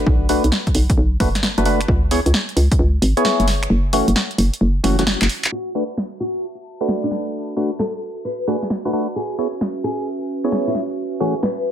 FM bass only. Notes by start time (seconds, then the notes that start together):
0.07 B1
0.44 B1
0.75 B1
0.98 B1
1.20 F#1
1.58 F#1
1.88 C#2
2.26 C#2
2.57 C#2
2.79 C#2
3.02 G#1
3.40 F#1
3.70 F#1
4.08 F#1
4.38 F#1
4.61 F#1
4.84 F#1
5.22 F#1